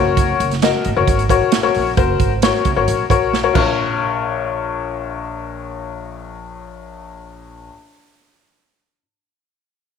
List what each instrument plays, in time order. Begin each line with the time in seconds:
Already playing: upright bass F#1, upright piano F#4 A#4 C#5
0.17 kick, closed hi-hat
0.40 upright bass F#1, closed hi-hat
0.51 snare, closed hi-hat
0.62 upright piano F#4 A#4 D#5, snare, closed hi-hat
0.84 upright bass G#1, closed hi-hat
0.96 upright bass F#1, upright piano F#4 A#4 C#5
1.07 upright bass G#1, kick, closed hi-hat
1.19 closed hi-hat
1.29 upright piano F#4 A#4 C#5, kick, closed hi-hat
1.41 upright bass A#1
1.52 snare, closed hi-hat
1.63 upright piano F#4 A#4 C#5
1.74 upright bass A#1, open hi-hat
1.97 upright bass F#1, upright piano F#4 A#4 C5, kick, closed hi-hat
2.20 upright bass G#1, kick, closed hi-hat
2.42 upright piano F#4 A#4 C#5, snare, closed hi-hat
2.65 upright bass F#1, kick, closed hi-hat
2.76 upright bass G#1, upright piano F#4 A#4 C#5
2.88 upright bass A#1, closed hi-hat
3.10 upright bass A#1, upright piano F#4 A#4 C#5, kick, closed hi-hat
3.33 snare
3.44 upright piano F#4 A#4 C#5
3.53 upright piano A#1 F4 A#4 C#5, upright bass A#1, kick, crash